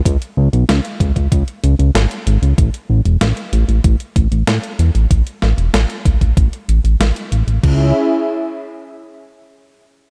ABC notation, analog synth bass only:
X:1
M:4/4
L:1/16
Q:1/4=95
K:C#m
V:1 name="Analog synth bass" clef=bass
C,, z C,, B,,, C,, z C,, C,, C,, z C,, C,, G,,, z G,,, C,, | A,,, z A,,, E,,, A,,, z A,,, A,,, A,,, z A,,, A,,, A,, z E,, A,,, | A,,, z A,,, E,,, A,,, z A,,, A,,, A,,, z A,,, A,,, A,,, z A,,, A,,, | C,,2 z12 z2 |]